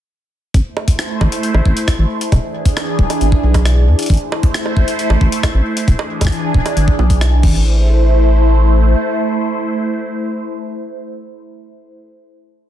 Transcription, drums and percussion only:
0.54 kick, closed hi-hat
0.77 high bongo
0.88 kick, closed hi-hat
0.99 cross-stick, closed hi-hat
1.21 kick, high bongo
1.32 closed hi-hat
1.43 closed hi-hat
1.54 high bongo
1.66 kick
1.77 closed hi-hat
1.88 kick, cross-stick, closed hi-hat
2.21 closed hi-hat
2.32 kick, closed hi-hat, high bongo
2.65 kick, closed hi-hat
2.77 cross-stick, closed hi-hat, high bongo
2.99 kick
3.10 closed hi-hat, high bongo
3.21 closed hi-hat
3.32 kick
3.54 kick, closed hi-hat, high bongo
3.65 cross-stick, closed hi-hat
3.99 closed hi-hat
4.02 closed hi-hat
4.06 closed hi-hat
4.10 kick, closed hi-hat
4.14 closed hi-hat
4.17 closed hi-hat
4.32 high bongo
4.43 kick, closed hi-hat
4.54 cross-stick, closed hi-hat
4.66 high bongo
4.77 kick
4.88 closed hi-hat
4.99 closed hi-hat
5.10 high bongo
5.21 kick
5.32 closed hi-hat
5.43 kick, cross-stick, closed hi-hat, high bongo
5.77 closed hi-hat
5.88 kick, closed hi-hat
5.99 high bongo
6.21 kick, closed hi-hat, high bongo
6.25 kick, cross-stick
6.29 kick, closed hi-hat
6.54 kick
6.66 closed hi-hat, high bongo
6.77 closed hi-hat
6.88 kick
6.99 high bongo
7.10 kick, closed hi-hat
7.21 cross-stick, closed hi-hat
7.43 kick, crash

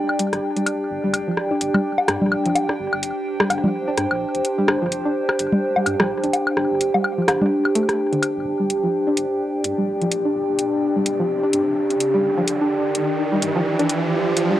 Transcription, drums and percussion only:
0.09 high woodblock
0.19 closed hi-hat
0.33 cross-stick, closed hi-hat
0.57 closed hi-hat
0.66 closed hi-hat, high woodblock
1.14 closed hi-hat, high woodblock
1.37 cross-stick
1.61 closed hi-hat
1.75 low conga, high woodblock
1.98 low woodblock
2.08 cross-stick, closed hi-hat
2.22 low conga
2.32 high woodblock
2.46 closed hi-hat
2.55 closed hi-hat, low woodblock
2.69 cross-stick
2.93 high woodblock
3.03 closed hi-hat
3.40 cross-stick
3.50 closed hi-hat, high woodblock, low woodblock
3.64 low conga
3.97 cross-stick, closed hi-hat
4.11 high woodblock
4.35 closed hi-hat
4.45 closed hi-hat
4.68 cross-stick, high woodblock
4.92 closed hi-hat
5.29 cross-stick, high woodblock
5.39 closed hi-hat
5.53 low conga
5.76 low woodblock
5.86 closed hi-hat, high woodblock
6.00 cross-stick, low conga
6.24 closed hi-hat
6.33 closed hi-hat, low woodblock
6.47 high woodblock
6.57 cross-stick
6.81 closed hi-hat
6.94 low woodblock
7.04 high woodblock
7.28 cross-stick, closed hi-hat, low woodblock
7.42 low conga
7.65 high woodblock
7.75 closed hi-hat
7.89 cross-stick, closed hi-hat
8.13 closed hi-hat
8.22 closed hi-hat, high woodblock
8.70 closed hi-hat
9.17 closed hi-hat
9.64 closed hi-hat
10.02 closed hi-hat
10.12 closed hi-hat
10.59 closed hi-hat
11.06 closed hi-hat
11.53 closed hi-hat
11.91 closed hi-hat
12.01 closed hi-hat
12.48 closed hi-hat
12.95 closed hi-hat
13.42 closed hi-hat
13.79 closed hi-hat
13.89 closed hi-hat
14.37 closed hi-hat

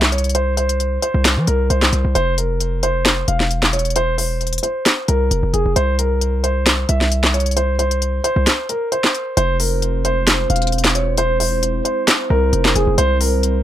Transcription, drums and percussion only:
0.02 snare, clap
0.12 closed hi-hat
0.18 closed hi-hat
0.24 closed hi-hat
0.29 closed hi-hat
0.35 closed hi-hat
0.57 closed hi-hat
0.69 closed hi-hat
0.80 closed hi-hat
1.02 closed hi-hat
1.25 snare, clap, closed hi-hat
1.47 closed hi-hat
1.70 closed hi-hat
1.82 snare, clap
1.93 closed hi-hat
2.15 closed hi-hat
2.38 closed hi-hat
2.60 closed hi-hat
2.83 closed hi-hat
3.05 snare, clap, closed hi-hat
3.28 closed hi-hat
3.40 snare
3.51 closed hi-hat
3.63 snare, clap
3.73 closed hi-hat
3.79 closed hi-hat
3.85 closed hi-hat
3.90 closed hi-hat
3.96 closed hi-hat
4.18 open hi-hat
4.41 closed hi-hat
4.47 closed hi-hat
4.53 closed hi-hat
4.58 closed hi-hat
4.63 closed hi-hat
4.86 snare, clap, closed hi-hat
5.08 closed hi-hat
5.31 closed hi-hat
5.54 closed hi-hat
5.76 closed hi-hat
5.99 closed hi-hat
6.21 closed hi-hat
6.44 closed hi-hat
6.66 snare, clap, closed hi-hat
6.89 closed hi-hat
7.01 snare
7.12 closed hi-hat
7.24 snare, clap
7.34 closed hi-hat
7.40 closed hi-hat
7.46 closed hi-hat
7.51 closed hi-hat
7.57 closed hi-hat
7.79 closed hi-hat
7.91 closed hi-hat
8.02 closed hi-hat
8.24 closed hi-hat
8.47 snare, clap, closed hi-hat
8.69 closed hi-hat
8.92 closed hi-hat
9.04 snare, clap
9.15 closed hi-hat
9.37 closed hi-hat
9.60 open hi-hat
9.82 closed hi-hat
10.05 closed hi-hat
10.27 snare, clap, closed hi-hat
10.50 closed hi-hat
10.56 closed hi-hat
10.62 closed hi-hat
10.67 closed hi-hat
10.72 closed hi-hat
10.78 closed hi-hat
10.84 snare, clap, closed hi-hat
10.90 closed hi-hat
10.95 closed hi-hat
11.18 closed hi-hat
11.40 open hi-hat
11.63 closed hi-hat
11.85 closed hi-hat
12.08 snare, clap, closed hi-hat
12.53 closed hi-hat
12.65 snare, clap
12.76 closed hi-hat
12.98 closed hi-hat
13.21 open hi-hat
13.43 closed hi-hat

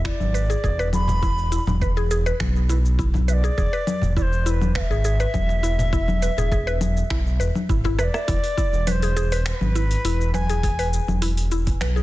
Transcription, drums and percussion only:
0.05 finger snap, kick, shaker
0.20 low conga, shaker
0.35 shaker
0.50 shaker
0.64 kick, shaker
0.79 cajon slap, shaker
0.93 low conga, shaker
1.08 cajon bass, cajon slap, shaker
1.23 kick, shaker
1.38 shaker
1.52 cajon slap, shaker
1.67 cajon bass, low conga, shaker
1.81 kick, shaker
1.97 shaker
2.11 shaker
2.26 shaker
2.40 finger snap, kick, low conga, shaker
2.56 shaker
2.70 shaker
2.85 shaker
2.99 kick, shaker
3.14 cajon bass, cajon slap, low conga, shaker
3.28 shaker
3.44 shaker
3.58 kick, shaker
3.74 shaker
3.87 low conga, shaker
4.02 cajon bass, shaker
4.17 kick, shaker
4.33 shaker
4.47 shaker
4.62 low conga, shaker
4.75 finger snap, kick, shaker
4.91 shaker
5.05 shaker
5.20 shaker
5.34 kick, low conga, shaker
5.49 cajon slap, shaker
5.64 shaker
5.79 cajon bass, cajon slap, shaker
5.93 kick, shaker
6.08 low conga, shaker
6.22 cajon slap, shaker
6.38 cajon bass, shaker
6.52 kick, shaker
6.67 shaker
6.81 low conga, shaker
6.97 shaker
7.10 finger snap, kick, shaker
7.27 shaker
7.40 cajon slap, shaker
7.55 low conga, shaker
7.69 kick, shaker
7.85 cajon bass, cajon slap, shaker
7.99 cross-stick, shaker
8.14 cross-stick, shaker
8.28 kick, open hi-hat, shaker
8.44 open hi-hat, shaker
8.58 kick, shaker
8.73 shaker
8.87 open hi-hat, low conga, shaker
9.02 open hi-hat, shaker
9.17 shaker
9.32 open hi-hat, shaker
9.46 finger snap, open hi-hat, shaker
9.61 low conga, shaker
9.76 shaker
9.91 open hi-hat, shaker
10.05 open hi-hat, shaker
10.21 shaker
10.34 low conga, shaker
10.49 open hi-hat, shaker
10.63 kick, open hi-hat, shaker
10.79 open hi-hat, shaker
10.93 shaker
11.08 low conga, shaker
11.22 open hi-hat, shaker
11.37 open hi-hat, shaker
11.52 shaker
11.67 kick, open hi-hat, shaker
11.81 finger snap, open hi-hat, low conga, shaker
11.97 shaker

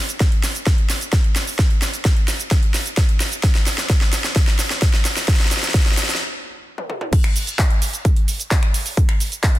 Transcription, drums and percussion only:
0.09 closed hi-hat, shaker
0.20 kick, snare, closed hi-hat, shaker
0.32 closed hi-hat
0.43 snare, open hi-hat, shaker
0.55 closed hi-hat, shaker
0.67 kick, snare, closed hi-hat, shaker
0.78 closed hi-hat
0.90 snare, open hi-hat, shaker
1.01 closed hi-hat, shaker
1.13 kick, snare, closed hi-hat, shaker
1.24 closed hi-hat
1.36 snare, open hi-hat, shaker
1.47 open hi-hat, shaker
1.59 kick, snare, closed hi-hat, shaker
1.70 closed hi-hat
1.82 snare, open hi-hat, shaker
1.93 closed hi-hat, shaker
2.05 kick, snare, closed hi-hat, shaker
2.17 closed hi-hat
2.28 snare, open hi-hat, shaker
2.40 closed hi-hat, shaker
2.51 kick, snare, closed hi-hat, shaker
2.63 closed hi-hat
2.74 snare, open hi-hat, shaker
2.86 closed hi-hat, shaker
2.97 kick, snare, closed hi-hat, shaker
3.09 closed hi-hat
3.20 snare, open hi-hat, shaker
3.32 closed hi-hat, shaker
3.43 kick, snare, closed hi-hat, shaker
3.55 snare, closed hi-hat
3.66 snare, open hi-hat, shaker
3.78 snare, closed hi-hat, shaker
3.90 kick, snare, closed hi-hat, shaker
4.01 snare, closed hi-hat
4.13 snare, open hi-hat, shaker
4.24 snare, closed hi-hat, shaker
4.36 kick, snare, closed hi-hat, shaker
4.47 snare, closed hi-hat
4.59 snare, open hi-hat, shaker
4.70 snare, closed hi-hat, shaker
4.82 kick, snare, closed hi-hat, shaker
4.93 snare, closed hi-hat
5.05 snare, open hi-hat, shaker
5.17 snare, open hi-hat, shaker
5.28 kick, snare, closed hi-hat, shaker
5.34 snare
5.40 snare, closed hi-hat
5.45 snare
5.51 snare, open hi-hat, shaker
5.57 snare
5.63 snare, closed hi-hat, shaker
5.68 snare
5.74 kick, snare, closed hi-hat, shaker
5.80 snare
5.86 snare, closed hi-hat
5.92 snare
5.97 snare, open hi-hat, shaker
6.03 snare
6.09 snare, closed hi-hat, shaker
6.15 snare
6.78 high tom
6.90 mid tom
7.01 mid tom
7.13 kick, closed hi-hat, crash, shaker
7.24 finger snap, closed hi-hat
7.36 open hi-hat, shaker
7.47 closed hi-hat, shaker
7.59 kick, clap, closed hi-hat, shaker
7.70 closed hi-hat
7.82 open hi-hat, shaker
7.93 closed hi-hat, shaker
8.05 kick, closed hi-hat, shaker
8.16 closed hi-hat
8.28 open hi-hat, shaker
8.40 closed hi-hat, shaker
8.51 kick, clap, closed hi-hat, shaker
8.63 finger snap, closed hi-hat
8.74 open hi-hat, shaker
8.86 open hi-hat, shaker
8.97 kick, closed hi-hat, shaker
9.09 finger snap, closed hi-hat
9.20 open hi-hat, shaker
9.32 closed hi-hat, shaker
9.43 kick, clap, closed hi-hat, shaker
9.55 closed hi-hat

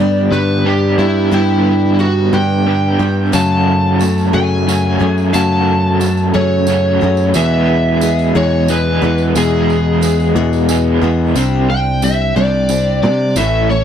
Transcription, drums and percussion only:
3.33 tambourine
4.01 tambourine
4.18 tambourine
4.69 tambourine
5.18 tambourine
5.34 tambourine
6.01 tambourine
6.17 tambourine
6.67 tambourine
7.17 tambourine
7.34 tambourine
8.01 tambourine
8.19 tambourine
8.68 tambourine
9.18 tambourine
9.35 tambourine
9.70 tambourine
10.03 tambourine
10.20 tambourine
10.53 tambourine
10.69 tambourine
11.36 tambourine
12.02 tambourine
12.69 tambourine
13.36 tambourine

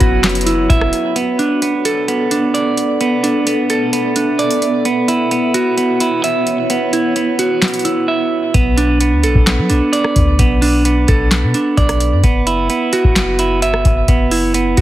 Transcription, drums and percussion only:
0.00 kick, closed hi-hat
0.24 snare, clap, closed hi-hat
0.29 closed hi-hat
0.35 closed hi-hat
0.41 closed hi-hat
0.47 closed hi-hat
0.70 kick, closed hi-hat
0.81 cross-stick
0.93 closed hi-hat
1.16 closed hi-hat
1.39 closed hi-hat
1.62 closed hi-hat
1.85 closed hi-hat
2.08 closed hi-hat
2.31 closed hi-hat
2.55 closed hi-hat
2.77 closed hi-hat
3.01 closed hi-hat
3.24 closed hi-hat
3.47 closed hi-hat
3.70 closed hi-hat
3.93 closed hi-hat
4.16 closed hi-hat
4.39 closed hi-hat
4.51 closed hi-hat
4.62 closed hi-hat
4.85 closed hi-hat
5.08 closed hi-hat
5.31 closed hi-hat
5.54 closed hi-hat
5.78 closed hi-hat
6.00 closed hi-hat
6.24 closed hi-hat
6.47 closed hi-hat
6.70 closed hi-hat
6.93 closed hi-hat
7.16 closed hi-hat
7.39 closed hi-hat
7.62 snare, clap, closed hi-hat
7.68 closed hi-hat
7.74 closed hi-hat
7.79 closed hi-hat
7.85 closed hi-hat
8.54 kick, closed hi-hat
8.78 closed hi-hat
9.01 closed hi-hat
9.23 closed hi-hat
9.35 kick
9.47 snare, clap, closed hi-hat
9.70 closed hi-hat
9.93 closed hi-hat
10.04 cross-stick
10.16 kick, closed hi-hat
10.39 kick, closed hi-hat
10.62 open hi-hat
10.85 closed hi-hat
11.08 kick, closed hi-hat
11.31 snare, clap, closed hi-hat
11.54 closed hi-hat
11.77 kick, closed hi-hat
11.89 cross-stick, closed hi-hat
12.00 closed hi-hat
12.24 kick, closed hi-hat
12.47 closed hi-hat
12.70 closed hi-hat
12.93 closed hi-hat
13.04 kick
13.16 snare, clap, closed hi-hat
13.39 closed hi-hat
13.62 closed hi-hat
13.74 cross-stick
13.85 kick, closed hi-hat
14.08 kick, closed hi-hat
14.31 open hi-hat
14.54 closed hi-hat
14.77 kick, closed hi-hat

